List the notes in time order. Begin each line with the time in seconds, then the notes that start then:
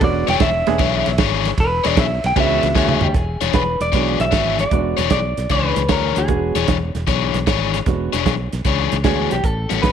0.01 E1 G#3 B3 C#4 D4 F#4 D5, kick, snare, ride
0.27 E1 E3 D4 G#4 C#5 G5, snare, ride
0.40 E1 E5, kick, snare, ride
0.67 E1 G#3 B3 C#4 D4 G#4, snare, ride
0.79 B1 E3 D4 G#4 C#5, kick, snare, ride
1.06 B1, snare, ride
1.18 G#1 E3 D4 G#4 C#5, kick, snare, ride
1.45 snare, ride
1.58 E1 B4, kick, snare, ride
1.84 E1 E3 D4 G#4 C#5 D5, snare, ride
1.97 B1 E5, kick, snare, ride
2.24 B1 G5, snare, ride
2.36 C#2 E3 G#3 B3 C#4 D4 F#4 G#4 C#5, kick, snare, ride
2.40 E5
2.63 C#2, snare, ride
2.75 D2 E3 D4 G#4 C#5, kick, snare
2.89 mid tom
3.01 D2 G4, floor tom
3.14 E1 G#4, kick, snare, closed hi-hat
3.41 E1 E3 D4 G#4 C#5, snare, closed hi-hat
3.53 E1 B4, kick, snare, closed hi-hat
3.80 E1 D5, snare, closed hi-hat
3.92 B1 E3 G#3 B3 C#4 D4 F#4 G#4 C#5, kick, snare, closed hi-hat
4.20 B1 E5, snare, closed hi-hat
4.31 G#1 E3 D4 G#4 C#5, kick, snare, closed hi-hat
4.59 D5, snare, closed hi-hat
4.71 E1 G#3 B3 C#4 D4 F#4, kick, closed hi-hat
4.97 E1 E3 D4 G#4 C#5, snare, closed hi-hat
5.10 B1 D5, kick, snare, closed hi-hat
5.37 B1, snare, closed hi-hat
5.50 C#2 E3 D4 G#4 B4 C#5, kick, snare, closed hi-hat
5.76 C#2, snare, closed hi-hat
5.89 D2 E3 D4 G#4 A#4 C#5, kick, snare, closed hi-hat
6.16 D2 G#4, snare, closed hi-hat
6.28 E1 G#3 B3 C#4 D4 F#4, kick, closed hi-hat
6.55 E1 E3 D4 G#4 C#5, snare, closed hi-hat
6.68 E1, kick, snare, closed hi-hat
6.95 E1, snare, closed hi-hat
7.07 B1 E3 D4 G#4 C#5, kick, snare, closed hi-hat
7.34 B1, snare, closed hi-hat
7.47 G#1 E3 D4 G#4 C#5, kick, snare, closed hi-hat
7.74 snare, closed hi-hat
7.86 E1 G#3 B3 C#4 D4 F#4, kick, snare, closed hi-hat
8.13 E1 E3 D4 G#4 C#5, snare, closed hi-hat
8.26 B1, kick, snare, closed hi-hat
8.53 B1, snare, closed hi-hat
8.65 C#2 E3 D4 G#4 C#5, kick, snare, closed hi-hat
8.92 C#2, snare, closed hi-hat
9.04 D2 E3 G#3 B3 C#4 D4 F#4 G#4 C#5, kick, snare, closed hi-hat
9.31 B1 G4, snare, closed hi-hat
9.44 A1 A4, kick, closed hi-hat
9.69 A1 A2 G3 C#4 F#4, snare, closed hi-hat
9.82 A1 B4, kick, snare, closed hi-hat